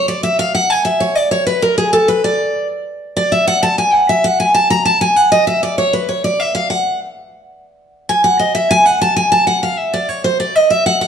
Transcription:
0.08 D5
0.23 E5
0.39 F5
0.55 F#5
0.70 G#5
0.85 E5
1.00 C#5
1.15 D5
1.31 C#5
1.47 B4
1.62 A#4
1.78 G#4
1.93 A4
2.08 B4
2.24 D5
3.17 D5
3.32 E5
3.47 F#5
3.63 A5
3.78 G#5
3.93 F#5
4.09 E5
4.24 F#5
4.40 G#5
4.55 A5
4.70 A#5
4.85 A5
5.01 G#5
5.16 F#5
5.32 D#5
5.47 E5
5.63 D5
5.78 C#5
5.93 B4
6.09 C#5
6.24 D5
6.40 E5
6.55 F5
6.70 F#5
8.09 G#5
8.24 F#5
8.39 D#5
8.55 E5
8.71 G#5
8.86 F#5
9.01 A5
9.16 G#5
9.32 A5
9.47 F#5
9.63 F5
9.78 E5
9.94 D5
10.09 C#5
10.24 C5
10.40 D5
10.56 D#5
10.70 E5
10.86 F#5
11.01 F#5

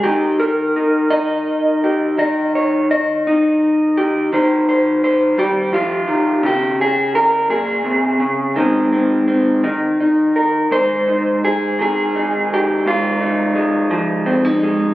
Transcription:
0.03 D#3 G4
0.40 A#4
0.76 D#4
1.10 D#4 D#5
1.84 G4
2.18 D#3 D#5
2.55 C#5
2.91 D#5
3.27 D#4
3.97 G4
4.33 D#3 C5
4.69 C5
5.04 C5
5.38 G3 G4
5.73 F3 F4
6.08 D#3
6.43 C#3 G4
6.81 G#4
7.15 A#4
7.50 A#2 G#4
7.84 C3
8.20 C#3
8.56 D#3 G#3 C4
8.93 C4
9.28 C4
9.64 D#3 D#4
10.00 D#4
10.36 A#4
10.71 G#2 C5
11.08 D#4
11.45 G#4
11.79 D#3 G#4
12.16 D#4
12.54 G4
12.86 G#2 F4
13.20 D#4
13.55 G#3
13.91 F3
14.26 C4
14.45 D#4
14.63 G#3

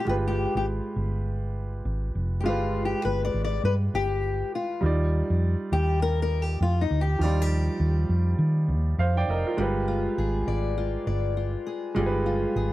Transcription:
0.05 G1 G#3 F4 G4
0.09 B4
0.28 G4
0.55 G#1 G4
0.96 G1
1.85 G#1
2.15 F1
2.40 G#3 G4
2.45 G1 F4 G4 B4
2.85 G4
3.05 G1 B4
3.25 D5
3.34 G#1
3.44 D5
3.64 G2 B4
3.94 G1 G4
4.55 F4
4.81 D#2 G3 D#4 F4
4.86 D5
5.30 F2
5.72 D#2 G4
6.02 A#4
6.22 A#4
6.42 G4
6.61 F2 F4
6.81 D#4
6.91 D2
7.01 G4
7.19 D#2 F3 D#4 F4
7.24 G3 D5
7.42 G4
7.80 D#2
8.09 F2
8.39 D#3
8.68 D#2
8.98 F2 C5 F5
9.17 D5 G5
9.28 F1 A#4 D#5
9.47 F4 A#4
9.57 G1 G3 G#3 F4 G4
9.62 B4
9.88 F4
10.18 G#1 G#4
10.47 G#1 D5
10.78 F4
11.07 G1 D5
11.37 F4
11.66 G#4
11.94 G1 G3 G#3 F4 G4
12.00 G#4
12.06 B4
12.26 F4
12.56 G#1 G#4

